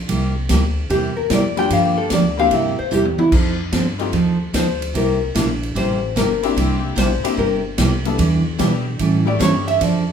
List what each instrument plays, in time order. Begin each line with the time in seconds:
0.08 upright bass C2, steel-string acoustic guitar C3 G3 A#3 E4 G4, kick, ride
0.49 upright bass D2, steel-string acoustic guitar C3 G3 A#3 E4 G4, kick, snare, hi-hat pedal, ride
0.90 upright bass E2, steel-string acoustic guitar C3 G3 A#3 E4 G4, hollow-body jazz guitar G4, kick, ride
1.17 hollow-body jazz guitar A#4
1.30 upright bass F2, steel-string acoustic guitar C3 G3 A#3 E4 G4, hollow-body jazz guitar D5, kick, snare, hi-hat pedal, ride
1.57 honky-tonk piano G3 A#3 D4 F4 G4, hollow-body jazz guitar G5, ride
1.70 upright bass G2, steel-string acoustic guitar D3 F3 A#3 D4 G4, hollow-body jazz guitar F5, kick, ride
1.98 hollow-body jazz guitar A4
2.10 upright bass D2, steel-string acoustic guitar D3 F3 A#3 D4 G4, hollow-body jazz guitar D5, kick, snare, hi-hat pedal, ride
2.37 honky-tonk piano A#3 C4 D4 E4 G4, hollow-body jazz guitar F5
2.51 upright bass G2, steel-string acoustic guitar C3 G3 A#3 E4 G4, hollow-body jazz guitar E5, kick, ride
2.79 hollow-body jazz guitar C5, muted upright bass stroke
2.91 upright bass E2, steel-string acoustic guitar C3 G3 A#3 E4 G4, hollow-body jazz guitar G4, hi-hat pedal
3.05 high tom
3.18 hollow-body jazz guitar E4, high tom
3.32 upright bass F2, steel-string acoustic guitar F3 C4 D#4 A4, hollow-body jazz guitar D#4, kick, crash
3.72 upright bass G2, steel-string acoustic guitar F3 C4 D#4 A4, kick, snare, hi-hat pedal, ride
3.99 honky-tonk piano A3 C4 D#4 F4 G4, ride
4.12 upright bass D#2, steel-string acoustic guitar F3 C4 D#4 A4, kick, ride
4.53 upright bass D2, steel-string acoustic guitar F3 C4 D#4 A4, hollow-body jazz guitar C5, kick, snare, hi-hat pedal, ride
4.82 ride
4.94 upright bass C2, steel-string acoustic guitar C3 G3 A#3 E4 G4, hollow-body jazz guitar A#4, kick, ride
5.35 upright bass A#1, steel-string acoustic guitar C3 G3 A#3 E4 G4, kick, snare, hi-hat pedal, ride
5.63 ride
5.75 upright bass A1, steel-string acoustic guitar C3 G3 A#3 E4 G4, hollow-body jazz guitar C5, kick, ride
6.16 upright bass G1, steel-string acoustic guitar C3 G3 A#3 E4 G4, hollow-body jazz guitar A#4, kick, snare, hi-hat pedal, ride
6.43 honky-tonk piano A#3 C4 D4 E4 G4, ride
6.56 upright bass C2, steel-string acoustic guitar C3 G3 A#3 E4 G4, kick, ride
6.96 upright bass A#1, steel-string acoustic guitar C3 G3 A#3 E4 G4, hollow-body jazz guitar C5, kick, snare, hi-hat pedal, ride
7.24 honky-tonk piano A#3 C4 D4 E4 G4, muted upright bass stroke, ride
7.37 upright bass G1, steel-string acoustic guitar C3 G3 A#3 E4 G4, hollow-body jazz guitar A#4, kick
7.78 upright bass C2, steel-string acoustic guitar C3 G3 A#3 E4 G4, kick, snare, hi-hat pedal, ride
8.05 honky-tonk piano G3 B3 D4 E4 A4, ride
8.18 upright bass E2, steel-string acoustic guitar E3 G3 D4 E4 B4, kick, ride
8.58 upright bass B2, steel-string acoustic guitar E3 G3 D4 E4 B4, honky-tonk piano G3 B3 D4 E4 G4, kick, snare, hi-hat pedal, ride
8.99 upright bass A2, steel-string acoustic guitar E3 G3 C#4 E4 A4, kick, ride
9.25 honky-tonk piano G3 A3 C#4 E4 G4, hollow-body jazz guitar D5
9.39 upright bass G2, steel-string acoustic guitar E3 G3 C#4 E4 A4, hollow-body jazz guitar C#5, kick, snare, hi-hat pedal, ride
9.68 hollow-body jazz guitar E5, ride
9.80 upright bass F2, steel-string acoustic guitar D3 F3 C4 D4 A4, hollow-body jazz guitar D5, kick, ride